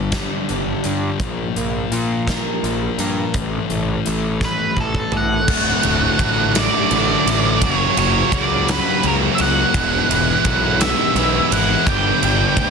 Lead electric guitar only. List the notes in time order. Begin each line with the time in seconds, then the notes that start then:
4.45 B4
4.80 A4
5.17 F#5
6.59 D5
7.64 C#5
7.99 C#5
8.34 D5
8.72 B4
9.07 A#4
9.35 E5
9.41 F#5
10.81 E5
11.53 F#5
11.89 G5